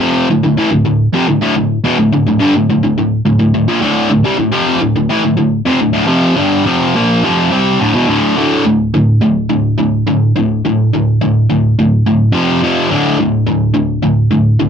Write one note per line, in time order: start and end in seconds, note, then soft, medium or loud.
0.00 0.27 F2 medium
0.00 0.27 C3 medium
0.00 0.28 F3 medium
0.30 0.42 D2 medium
0.30 0.42 A2 medium
0.43 0.57 D2 medium
0.43 0.56 A2 medium
0.57 0.70 A2 medium
0.57 0.70 E3 medium
0.71 0.84 D2 medium
0.71 0.85 A2 medium
0.85 1.07 D2 medium
0.85 1.08 A2 medium
1.13 1.26 F2 medium
1.13 1.27 C3 medium
1.28 1.40 D2 medium
1.28 1.41 A2 medium
1.42 1.55 D2 medium
1.42 1.55 A2 loud
1.56 1.78 D2 soft
1.56 1.78 A2 medium
1.84 1.97 E2 medium
1.84 1.97 B2 medium
1.99 2.11 D2 medium
1.99 2.11 A2 medium
2.12 2.25 D2 medium
2.12 2.26 A2 medium
2.27 2.39 D2 medium
2.27 2.40 A2 medium
2.39 2.53 G2 medium
2.39 2.54 D3 loud
2.56 2.68 D2 medium
2.56 2.69 A2 medium
2.70 2.82 D2 medium
2.70 2.83 A2 medium
2.83 2.96 D2 medium
2.83 2.97 A2 medium
2.98 3.20 D2 medium
2.98 3.20 A2 medium
3.25 3.38 D2 medium
3.25 3.38 A2 medium
3.39 3.53 D2 medium
3.39 3.53 A2 medium
3.54 3.68 D2 medium
3.54 3.68 A2 medium
3.68 3.81 A#2 medium
3.68 3.82 F3 medium
3.81 4.09 D2 medium
3.81 4.10 A2 medium
3.81 4.10 D3 loud
4.10 4.24 D2 medium
4.10 4.25 A2 medium
4.24 4.38 C3 medium
4.24 4.38 G3 medium
4.38 4.51 D2 medium
4.38 4.52 A2 medium
4.52 4.80 F2 medium
4.52 4.80 C3 medium
4.52 4.81 F3 loud
4.81 4.94 D2 medium
4.81 4.95 A2 medium
4.96 5.09 D2 medium
4.96 5.08 A2 medium
5.09 5.23 A2 medium
5.09 5.24 E3 medium
5.24 5.36 D2 medium
5.24 5.36 A2 medium
5.37 5.61 D2 medium
5.37 5.61 A2 medium
5.65 5.80 F2 loud
5.65 5.80 C3 loud
5.81 5.92 D2 medium
5.81 5.92 A2 medium
5.93 6.06 D2 medium
5.93 6.07 A2 medium
6.07 6.36 F2 medium
6.07 6.36 C3 medium
6.07 6.36 F3 medium
6.36 6.64 G2 medium
6.36 6.65 D3 medium
6.36 6.66 G3 medium
6.64 6.93 F2 medium
6.64 6.94 C3 medium
6.64 6.94 F3 loud
6.95 7.23 A#2 medium
6.95 7.23 F3 medium
6.95 7.23 A#3 loud
7.23 7.51 F2 loud
7.23 7.50 C3 medium
7.23 7.52 F3 medium
7.51 7.79 C3 medium
7.51 7.80 G3 medium
7.51 7.80 C4 medium
7.80 7.93 D2 medium
7.80 7.94 A2 medium
7.94 8.08 E2 medium
7.94 8.08 B2 loud
8.08 8.35 D2 medium
8.08 8.37 A2 medium
8.08 8.37 D3 medium
8.37 8.64 D2 medium
8.37 8.64 A2 medium
8.37 8.64 D3 loud
8.66 8.91 D2 medium
8.66 8.91 A2 medium
8.94 9.19 D2 medium
8.94 9.20 A2 medium
9.22 9.47 D2 medium
9.22 9.48 A2 medium
9.50 9.76 D2 medium
9.50 9.76 A2 medium
9.78 10.04 D2 medium
9.78 10.04 A2 medium
10.07 10.33 D2 medium
10.07 10.33 A2 loud
10.36 10.61 D2 medium
10.36 10.61 A2 medium
10.65 10.90 D2 medium
10.65 10.90 A2 medium
10.93 11.18 D2 medium
10.93 11.19 A2 medium
11.21 11.46 D2 medium
11.21 11.46 A2 loud
11.50 11.74 D2 medium
11.50 11.75 A2 medium
11.79 12.03 D2 medium
11.79 12.03 A2 medium
12.06 12.31 D2 medium
12.06 12.31 A2 medium
12.32 12.59 F2 medium
12.32 12.60 C3 loud
12.32 12.61 F3 medium
12.63 12.89 F2 loud
12.63 12.89 C3 loud
12.63 12.89 F3 loud
12.90 13.17 D2 medium
12.90 13.17 A2 loud
12.90 13.17 D3 loud
13.19 13.44 D2 medium
13.19 13.44 A2 medium
13.46 13.72 D2 medium
13.46 13.72 A2 medium
13.74 14.00 D2 medium
13.74 14.00 A2 medium
14.02 14.28 D2 medium
14.02 14.28 A2 medium
14.31 14.56 D2 medium
14.31 14.57 A2 medium
14.60 14.69 D2 medium
14.60 14.69 A2 medium